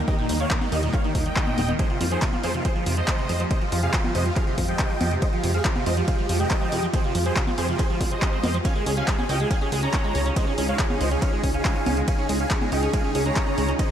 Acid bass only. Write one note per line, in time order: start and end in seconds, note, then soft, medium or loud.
0.08 0.17 D#3 medium
0.18 0.28 A#2 medium
0.29 0.33 D#3 medium
0.40 0.50 D#3 medium
0.51 0.60 A#2 medium
0.61 0.65 D#3 medium
0.72 0.82 D#3 medium
0.83 0.92 A#2 medium
0.94 0.97 D#3 medium
1.04 1.14 D#3 medium
1.15 1.25 A#2 medium
1.26 1.30 D#3 medium
1.36 1.46 D#3 medium
1.47 1.57 A#2 medium
1.58 1.62 D#3 medium
1.69 1.78 D#3 medium
1.79 1.89 F3 medium
1.90 2.00 C3 medium
2.01 2.05 F3 medium
2.11 2.21 F3 medium
2.22 2.32 C3 medium
2.33 2.37 F3 medium
2.44 2.53 F3 medium
2.54 2.64 C3 medium
2.65 2.69 F3 medium
2.76 2.85 F3 medium
2.86 2.96 C3 medium
2.97 3.01 F3 medium
3.08 3.17 F3 medium
3.19 3.28 C3 medium
3.29 3.33 F3 medium
3.40 3.50 F3 medium
3.51 3.60 C3 medium
3.61 3.65 F3 medium
3.72 3.82 F3 medium
3.83 3.92 C3 medium
4.04 4.14 F3 medium
4.15 4.25 C3 medium
4.26 4.30 F3 medium
4.36 4.46 F3 medium
4.47 4.57 C3 medium
4.58 4.62 F3 medium
4.69 4.78 F3 medium
4.79 4.89 C3 medium
4.90 4.94 F3 medium
5.01 5.10 F3 medium
5.11 5.21 C3 medium
5.22 5.26 F3 medium
5.33 5.42 F3 medium
5.44 5.53 C3 medium
5.54 5.58 F3 medium
5.65 5.75 F3 medium
5.76 5.85 C3 medium
5.86 5.90 F3 medium
5.97 6.07 F3 medium
6.08 6.17 C3 medium
6.19 6.22 F3 medium
6.29 6.39 F3 medium
6.40 6.50 C3 medium
6.51 6.55 F3 medium
6.61 6.71 F3 medium
6.72 6.82 C3 medium
6.83 6.87 F3 medium
6.94 7.03 F3 medium
7.04 7.14 C3 medium
7.15 7.19 F3 medium
7.26 7.35 F3 medium
7.36 7.46 C3 medium
7.47 7.51 F3 medium
7.58 7.67 F3 medium
7.68 7.78 C3 medium
7.79 7.83 F3 medium
7.90 8.00 F3 medium
8.01 8.07 G3 medium
8.11 8.15 C3 medium
8.22 8.29 C4 medium
8.33 8.39 C4 medium
8.44 8.50 A#3 loud
8.54 8.58 F3 loud
8.65 8.75 C#4 medium
8.76 8.85 G#3 medium
8.86 8.93 C#4 medium
8.97 9.07 C#4 medium
9.08 9.17 G#3 medium
9.19 9.25 C#4 medium
9.29 9.39 C#4 medium
9.40 9.50 G#3 medium
9.51 9.57 C#4 medium
9.61 9.71 C#4 medium
9.72 9.82 G#3 medium
9.83 9.89 C#4 medium
9.93 10.03 C#4 medium
10.04 10.14 G#3 medium
10.15 10.21 C#4 medium
10.26 10.35 C#4 medium
10.36 10.46 G#3 medium
10.47 10.54 C#4 medium
10.58 10.67 C#4 medium
10.69 10.78 G#3 medium
10.79 10.86 C#4 medium
10.90 11.00 C#4 medium
11.01 11.10 G#3 medium
11.11 11.18 C#4 medium
11.22 11.32 C#4 medium
11.33 11.42 G#3 medium
11.43 11.50 C#4 medium
11.54 11.64 C#4 medium
11.65 11.75 G#3 medium
11.76 11.82 C#4 medium
11.86 11.96 C#4 medium
11.97 12.07 G#3 medium
12.08 12.14 C#4 medium
12.19 12.28 C#4 medium
12.29 12.39 G#3 medium
12.40 12.46 C#4 medium
12.51 12.60 C#4 medium
12.61 12.71 G#3 medium
12.72 12.79 C#4 medium
12.83 12.92 C#4 medium
12.94 13.03 G#3 medium
13.04 13.11 C#4 medium
13.15 13.25 C#4 medium
13.26 13.35 G#3 medium
13.36 13.43 C#4 medium
13.47 13.57 C#4 medium
13.58 13.67 G#3 medium
13.69 13.75 C#4 medium
13.79 13.89 C#4 medium